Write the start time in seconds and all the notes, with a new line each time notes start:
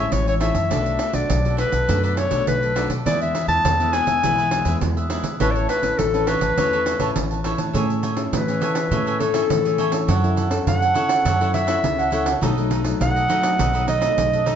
Already playing: G#3 C#4 E4 E5
0.12 A1 E3 C#5, pandeiro
0.27 C#5 E5 G#5, pandeiro
0.40 G#3 C#4 E4 A4 C#5 E5 G#5, pandeiro
0.54 F#2 C#5 E5 G#5, pandeiro
0.70 B1 B2 A3 D4 F#4 A4 B4 D5, pandeiro
0.86 pandeiro
0.99 D4 A4 B4 D5, pandeiro
1.13 B1 A3 D4 F#4 D5, pandeiro
1.30 B1 F#3, pandeiro
1.45 A3 D4 F#4 A4 B4 D5, pandeiro
1.57 D4 A4 B4 D5, pandeiro
1.71 B1 A4 B4 D5, pandeiro
1.88 F#2 B2 A3 D4 F#4 A4 B4 D5, pandeiro
2.03 D4 A4 B4 D5, pandeiro
2.16 D4 A4 B4 C#5 D5, pandeiro
2.30 B1 A3 D4 F#4 A4 B4 D5, pandeiro
2.47 B1 F#3 B4, pandeiro
2.62 A4 B4 D5, pandeiro
2.76 A3 D4 F#4 A4 B4 D5, pandeiro
2.89 B2 A4 B4 D5, pandeiro
3.06 E2 E3 G#3 B3 E4 G#4 B4 D5 E5, pandeiro
3.21 E5, pandeiro
3.35 E4 G#4 B4 E5, pandeiro
3.48 E2 G#3 B3 E4 A5, pandeiro
3.65 E2 B2, pandeiro
3.80 G#3 B3 E4 G#4 B4 E5, pandeiro
3.93 E4 G#4 B4 E5 G#5, pandeiro
4.06 E2 G#4 B4 E5, pandeiro
4.23 B1 E3 G#3 B3 E4 G#4 B4 E5, pandeiro
4.38 E4 G#4 B4 E5, pandeiro
4.51 E4 G#4 B4 E5, pandeiro
4.65 E2 G#3 B3 E4 G#4 B4 E5, pandeiro
4.81 E2 B2, pandeiro
4.97 G#4 B4 E5, pandeiro
5.10 G#3 B3 E4 G#4 B4 E5, pandeiro
5.23 E3 G#4 B4 E5, pandeiro
5.40 A1 A3 C#4 E4 A4 B4 C#5 A5, pandeiro
5.51 D5
5.56 C#5, pandeiro
5.68 A4 B4 C#5 A5, pandeiro
5.82 A1 C#4 E4 B4, pandeiro
5.98 A1 E3 A4, pandeiro
6.14 C#4 E4 B4 C#5 A5, pandeiro
6.27 A4 B4 C#5 A5, pandeiro
6.41 A1 B4 C#5 A5, pandeiro
6.57 E2 A3 C#4 E4 A4 B4 C#5 A5, pandeiro
6.73 A4 B4 C#5 A5, pandeiro
6.85 A4 B4 C#5 A5, pandeiro
6.99 A1 C#4 E4 A4 B4 C#5 A5, pandeiro
7.16 A1 E3, pandeiro
7.31 B4 C#5 A5, pandeiro
7.44 C#4 E4 A4 B4 C#5 A5, pandeiro
7.58 A2 B4 C#5 A5, pandeiro
7.73 A2 A3 C#4 E4 G#4 A4 C#5 E5 G#5, pandeiro
7.90 pandeiro
8.02 A4 C#5 E5 G#5, pandeiro
8.17 C#4 E4 G#4, pandeiro
8.33 A2 E3 B4, pandeiro
8.48 C#4 E4 G#4 C#5 E5 G#5, pandeiro
8.61 A4 C#5 E5 G#5, pandeiro
8.75 C#5 E5 G#5, pandeiro
8.91 A2 A3 C#4 E4 G#4 A4 C#5 E5 G#5, pandeiro
9.06 A4 C#5 E5 G#5, pandeiro
9.20 A4 C#5 E5 G#5, pandeiro
9.33 C#4 E4 G#4 A4 C#5 E5 G#5, pandeiro
9.50 A2 E3, pandeiro
9.65 C#4 E4 G#4 C#5 E5 G#5, pandeiro
9.78 A4 C#5 E5 G#5, pandeiro
9.92 C#4 E4 A4 C#5 E5 G#5, pandeiro
10.08 F#2 F#3 E4 A4 C#5 F#5, pandeiro
10.23 C#4 E4 A4, pandeiro
10.36 E4 A4 C#5 F#5, pandeiro
10.51 C#4 E4 A4, pandeiro
10.66 F#2 C#3 F#5, pandeiro
10.81 A4 C#5 F#5, pandeiro
10.94 C#4 E4 A4 C#5 F#5, pandeiro
11.09 A4 C#5 F#5, pandeiro
11.25 F#2 F#3 E4 A4 C#5 F#5, pandeiro
11.40 C#4 E4 A4 C#5 F#5, pandeiro
11.54 E4 A4 C#5 E5 F#5, pandeiro
11.67 C#4 E4 A4 C#5 F#5, pandeiro
11.83 C#2 C#3, pandeiro
11.98 A4 C#5 F#5, pandeiro
12.11 C#4 E4 A4 C#5 F#5, pandeiro
12.25 A4 C#5 F#5, pandeiro
12.41 B1 B2 F#3 A3 D#4 A4 B4 D#5, pandeiro
12.58 F#3 A3 D#4, pandeiro
12.70 D#4 A4 B4 D#5, pandeiro
12.84 F#3 A3 D#4, pandeiro
13.00 B1 F#2 F#5, pandeiro
13.15 A4 B4 D#5, pandeiro
13.28 F#3 A3 D#4 A4 B4 D#5, pandeiro
13.42 A4 B4 D#5, pandeiro
13.58 B1 B2 D#4 A4 B4 D#5, pandeiro
13.73 F#3 A3 D#4 A4 B4 D#5, pandeiro
13.87 D#4 A4 B4 D#5, pandeiro
14.00 F#3 A3 D#4 A4 B4 D#5, pandeiro
14.17 B1 F#2, pandeiro
14.32 A4 B4 D#5, pandeiro
14.46 F#3 A3 D#4 A4 B4 D#5, pandeiro